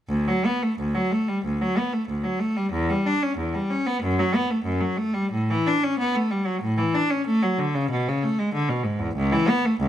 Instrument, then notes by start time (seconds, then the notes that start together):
cello
0.09 D2
0.28 F#3
0.46 B3
0.63 A3
0.79 D2
0.95 F#3
1.11 A3
1.28 G3
1.45 D2
1.62 F#3
1.77 B3
1.93 A3
2.08 D2
2.24 F#3
2.39 A3
2.56 G3
2.72 E2
2.89 G3
3.06 D4
3.22 C#4
3.37 E2
3.54 G3
3.70 C#4
3.87 B3
4.02 F#2
4.19 F#3
4.35 B3
4.50 A3
4.65 F#2
4.81 F#3
4.97 A3
5.14 G3
5.32 A2
5.50 E3
5.67 D4
5.83 C#4
5.99 B3
6.15 A3
6.31 G3
6.46 F#3
6.62 A2
6.78 E3
6.94 D4
7.10 C#4
7.27 A3
7.43 F#3
7.58 D3
7.75 C#3
7.91 B2
8.08 C#3
8.23 A3
8.39 G#3
8.54 D3
8.69 B2
8.84 G#2
8.99 E2
9.16 C#2
9.32 E3
9.49 B3
9.65 A3
9.80 C#2